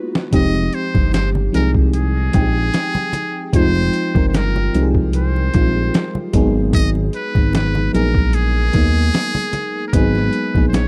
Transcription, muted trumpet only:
0.35 D#5
0.74 C5
1.14 C5
1.55 A#4
1.95 G#4
3.55 C5
4.28 C5
4.35 A#4
5.15 C5
6.74 D#5
7.15 B4
7.55 B4
7.94 A#4
8.34 G#4
9.87 A#4
9.94 B4
10.68 C5
10.74 C#5

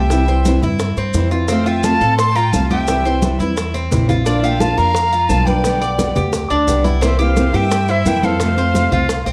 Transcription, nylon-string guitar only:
Already playing: A3 C4
0.10 C3 E3 G3 C4 E4
0.27 G3 C4 E4
0.46 C3 E3 G3 C4 E4
0.63 G3 C4 E4
0.81 muted nylon-string guitar stroke
1.15 C3 E3 G3 C4 E4
1.32 G3 C4 E4
1.50 C3 F3 A3 C4 F4
1.66 A3 C4 F4
1.83 C3 F3 A3 C4 F4
2.01 A3 C4 F4
2.18 muted nylon-string guitar stroke
2.53 C3 F3 A3 C4 F4
2.70 A3 C4 F4
2.87 C3 E3 G3 C4 E4
3.05 G3 C4 E4
3.22 C3 E3 G3 C4 E4
3.40 G3 C4 E4
3.57 muted nylon-string guitar stroke
3.91 C3 E3 G3 C4 E4
4.08 G3 C4 E4
4.25 F3 A#3 D4 F4
4.42 A#3 D4 F4
4.60 F3 A#3 D4 F4
4.77 A#3 D4 F4
4.95 muted nylon-string guitar stroke
5.29 F3 A#3 D4 F4
5.46 A#3 D4 F4
5.64 B2 D3 G3 B3 G4
5.81 G3 B3 G4
5.98 B2 D3 G3 B3 G4
6.15 G3 B3 G4
6.33 muted nylon-string guitar stroke
6.67 B2 D3 G3 B3 G4
6.85 G3 B3 G4
7.02 C3 E3 A#3 C4 E4
7.20 A#3 C4 E4
7.36 C3 E3 A#3 C4 E4
7.53 A#3 C4 E4
7.71 muted nylon-string guitar stroke
8.05 C3 E3 A#3 C4 E4
8.22 A#3 C4 E4
8.40 C3 F3 A3 C4 F4
8.57 A3 C4 F4
8.74 C3 F3 A3 C4 F4
8.91 A3 C4 F4
9.08 muted nylon-string guitar stroke

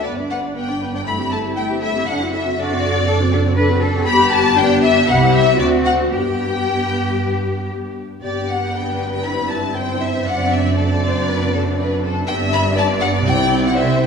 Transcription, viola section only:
0.05 B3 B4
0.18 D4 D5
0.30 B3 B4
0.42 D4 D5
0.55 B3 B4
0.69 D4 D5
0.81 B3 B4
0.93 D4 D5
1.05 A3 A4
1.19 C4 G4
1.32 A3 A4
1.45 C4 G4
1.57 A3 A4
1.70 C4 G4
1.82 A3 A4
1.95 C4 G4
2.07 D4 A4
2.20 C4 F#4
2.34 D4 A4
2.45 C4 F#4
2.58 D4 A4
2.71 C4 F#4
2.84 D4 A4
2.96 C4 F#4
3.09 D4 A4
3.21 C4 F#4
3.33 D4 A4
3.45 C4 F#4
3.57 D4 A4
3.71 C4 F#4
3.82 D4 A4
3.94 C4 F#4
4.08 B3 G4
4.58 B3 G4
5.07 C4 G4
5.58 C4 F#4
6.10 B3 G4
8.23 B3 G4
9.25 C4 E4
10.26 D4
12.26 B3
13.26 C4 E4

